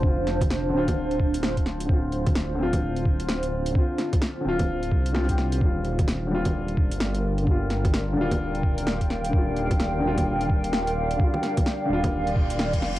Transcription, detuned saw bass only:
X:1
M:4/4
L:1/16
Q:"Swing 16ths" 1/4=129
K:Eblyd
V:1 name="Detuned saw bass" clef=bass
F,,,6 D,,,8- D,,,2 | D,,,6 D,,,8- D,,,2 | z6 D,,,4 C,,6 | E,,,8- E,,,3 G,,,4- G,,,- |
G,,,6 E,,,8- E,,,2 | E,,,6 E,,,8- E,,,2 | z6 E,,,8 F,,,2 |]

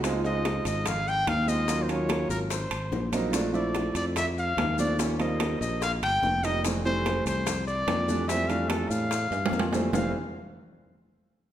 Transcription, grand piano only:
X:1
M:4/4
L:1/8
Q:1/4=146
K:F
V:1 name="Grand piano"
[_A,C_EF] [A,CEF]3 z3 [A,CEF] | [_G,B,_DF] [G,B,DF]3 z3 [G,B,C_E] | [F,A,CD] [F,A,CE]3 z3 [F,A,CD] | [F,G,B,_D] [F,G,B,C]3 z3 [F,G,B,_E] |
[E,G,A,C] [E,G,A,C]3 z3 [E,G,A,D] | [E,G,A,C] [E,G,A,D]3 z3 [E,G,A,C] | [E,G,A,C] z6 z |]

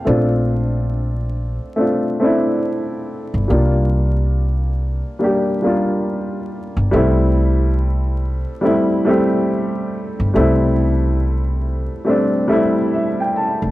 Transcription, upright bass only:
X:1
M:4/4
L:1/16
Q:"Swing 16ths" 1/4=70
K:F
V:1 name="Upright bass" clef=bass
B,,,6- B,,, z8 G,,, | C,,6- C,, z8 G,,, | C,,6- C,, z8 G,,, | C,,6- C,, z8 F,,, |]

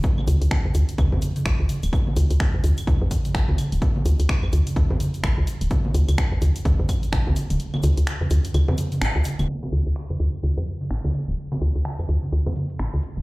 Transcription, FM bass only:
X:1
M:4/4
L:1/16
Q:"Swing 16ths" 1/4=127
K:Dm
V:1 name="FM bass" clef=bass
z2 D,, D,, z F,, D,, z D,, F,, z2 A,,, D,, z D,,, | z2 D,, D,, z F,, D,, z D,, F,, z2 A,,, D,, z D,,, | z2 D,, D,, z F,, D,, z D,, F,, z2 A,,, D,, z D,,, | z2 D,, D,, z F,, D,, z D,, F,, z2 A,,, D,, z D,,, |
z2 D,, D,, z F,, D,, z D,, F,, z2 A,,, D,, z D,,, | z2 D,, D,, z F,, D,, z D,, F,, z2 A,,, D,, z D,,, | z2 D,, D,, z F,, D,, z D,, F,, z2 A,,, D,, z D,,, |]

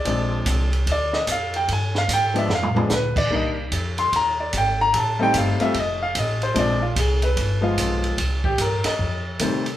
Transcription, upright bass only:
X:1
M:4/4
L:1/8
Q:"Swing" 1/4=148
K:Bbmix
V:1 name="Upright bass" clef=bass
B,,,2 C,,2 D,,2 F,,2 | G,,2 A,,2 F,,2 D,,2 | C,,2 F,,2 E,,2 A,,,2 | =A,,,2 G,,, z F,,,2 A,,,2 |
B,,,2 C,,2 G,,,2 =B,,,2 | C,,2 G,, z F,,2 C,2 |]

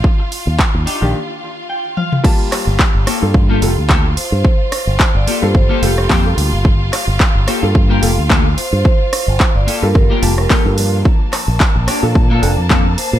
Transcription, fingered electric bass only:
X:1
M:4/4
L:1/16
Q:"Swing 16ths" 1/4=109
K:Gm
V:1 name="Fingered electric bass" clef=bass
z3 E,, z E,, z B,,, z8 | z3 G,,, z G,,, z G,,3 F,,, D,,3 z G,, | z3 G,,, z G,,, z G,, G,,, z F,,,2 F,,2 D,, G,,,- | G,,,2 z G,,, z G,,, z G,,3 F,,, D,,3 z G,, |
z3 G,,, z G,,, z G,, G,,, z F,,,2 z G,,3 | z3 B,,, z B,,, z B,,3 F,,, F,,3 z B,, |]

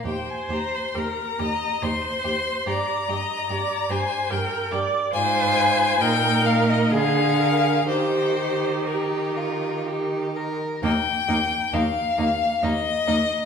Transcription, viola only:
X:1
M:3/4
L:1/8
Q:1/4=67
K:Eb
V:1 name="Viola"
c2 B e c2 | d e d c B d | c2 B2 A B | G4- G z |
B, B, B, B, B, B, |]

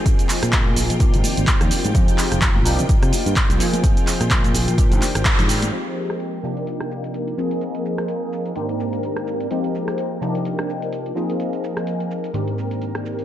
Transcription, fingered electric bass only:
X:1
M:4/4
L:1/16
Q:"Swing 16ths" 1/4=127
K:Fdor
V:1 name="Fingered electric bass" clef=bass
z3 B,,3 B,,, B,,2 A,,, z A,,, z E,, z A,, | F,, z2 F,,,3 C,, C, z C, z G,, z C,, z2 | z3 B,,3 B,,, B,,2 A,,, z A,,, z A,,3 | z16 |
z16 | z16 | z16 |]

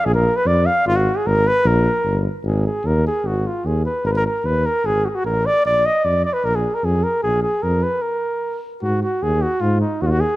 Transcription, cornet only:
X:1
M:2/4
L:1/16
Q:1/4=151
K:none
V:1 name="Cornet"
_A _B2 _c d2 f2 | F _G2 _A _B2 _c2 | _B6 z2 | _A2 A2 _B2 A2 |
_G2 F2 _A2 _c2 | _B/2 _c/2 B B2 c2 B2 | _A2 _G/2 A/2 G _B2 d2 | d2 _e2 d2 d _c |
_B _A2 B A2 B2 | _A2 A2 _B2 _c2 | _B6 z2 | _G2 G2 _A2 G2 |
F2 _E2 _G/2 F/2 G _A2 |]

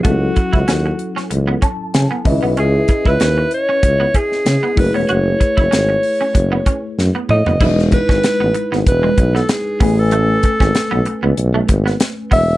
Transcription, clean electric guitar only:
X:1
M:4/4
L:1/16
Q:"Swing 16ths" 1/4=95
K:Alyd
V:1 name="Clean electric guitar"
A, z2 E C z2 C z B, C z2 B, z B, | C z2 E C z2 C z B, C z2 B, z B, | F z2 E C z2 C z B, C z2 B, z B, | E z2 C z B, z B, z G, z B, z2 B, z |
A, z2 C z B, z B, z A, z B, z2 B, z |]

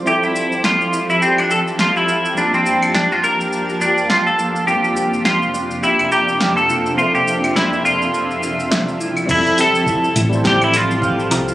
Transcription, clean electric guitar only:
X:1
M:4/4
L:1/16
Q:"Swing 16ths" 1/4=104
K:F
V:1 name="Clean electric guitar"
G E3 F3 E C D A2 F E3 | D C3 D F B4 D2 F A3 | G4 F4 E2 G3 A3 | F G3 E2 F8 z2 |
E2 A6 G E F4 z2 |]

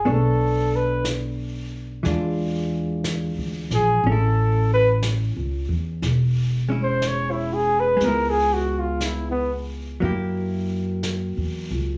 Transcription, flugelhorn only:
X:1
M:4/4
L:1/16
Q:"Swing" 1/4=60
K:Alyd
V:1 name="Flugelhorn"
A2 B2 z8 z2 G2 | A2 B2 z6 z ^B c E G =B | ^A G F ^E =E B, z8 z2 |]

